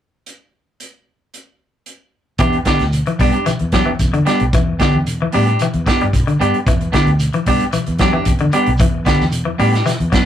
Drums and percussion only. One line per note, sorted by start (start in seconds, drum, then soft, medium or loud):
0.26 closed hi-hat soft
0.80 closed hi-hat soft
1.34 closed hi-hat soft
1.86 closed hi-hat soft
2.38 kick medium
2.38 closed hi-hat medium
2.38 shekere medium
2.52 closed hi-hat soft
2.65 kick medium
2.65 snare medium
2.65 closed hi-hat soft
2.65 shekere soft
2.79 snare soft
2.79 closed hi-hat soft
2.93 closed hi-hat medium
2.93 shekere medium
3.06 closed hi-hat soft
3.19 kick medium
3.19 open hi-hat medium
3.19 shekere soft
3.33 closed hi-hat soft
3.46 closed hi-hat medium
3.46 shekere medium
3.59 closed hi-hat soft
3.72 kick medium
3.72 snare medium
3.72 closed hi-hat soft
3.72 shekere soft
3.99 kick medium
3.99 closed hi-hat medium
3.99 shekere medium
4.14 closed hi-hat soft
4.26 snare soft
4.26 closed hi-hat medium
4.26 shekere soft
4.40 closed hi-hat soft
4.53 kick medium
4.53 closed hi-hat medium
4.53 shekere medium
4.80 kick medium
4.80 snare medium
4.80 closed hi-hat soft
4.80 shekere soft
5.06 closed hi-hat medium
5.06 shekere medium
5.32 open hi-hat medium
5.32 shekere soft
5.46 closed hi-hat soft
5.59 closed hi-hat medium
5.59 shekere medium
5.73 closed hi-hat soft
5.86 kick medium
5.86 snare medium
5.86 closed hi-hat soft
5.86 shekere soft
6.01 closed hi-hat soft
6.13 kick medium
6.13 closed hi-hat medium
6.13 shekere medium
6.28 closed hi-hat soft
6.41 closed hi-hat soft
6.41 shekere soft
6.54 closed hi-hat soft
6.67 kick medium
6.67 closed hi-hat medium
6.67 shekere medium
6.81 closed hi-hat soft
6.93 kick medium
6.93 snare medium
6.93 closed hi-hat soft
6.93 shekere soft
7.07 closed hi-hat soft
7.19 closed hi-hat medium
7.19 shekere medium
7.33 closed hi-hat soft
7.46 kick medium
7.46 open hi-hat medium
7.46 shekere soft
7.60 closed hi-hat soft
7.73 closed hi-hat medium
7.73 shekere medium
7.86 closed hi-hat soft
7.98 kick medium
7.98 snare medium
7.98 closed hi-hat soft
7.98 shekere soft
8.25 kick medium
8.25 closed hi-hat medium
8.25 shekere medium
8.39 closed hi-hat soft
8.52 closed hi-hat medium
8.52 shekere soft
8.66 closed hi-hat soft
8.77 kick medium
8.77 closed hi-hat medium
8.77 shekere medium
9.05 kick medium
9.05 snare medium
9.05 closed hi-hat soft
9.05 shekere soft
9.20 snare soft
9.32 closed hi-hat medium
9.32 shekere medium
9.59 open hi-hat medium
9.59 shekere soft
9.73 snare soft
9.73 closed hi-hat soft
9.86 snare soft
9.86 closed hi-hat medium
9.86 shekere medium
10.00 closed hi-hat soft
10.12 kick medium
10.12 snare medium
10.12 closed hi-hat soft
10.12 shekere soft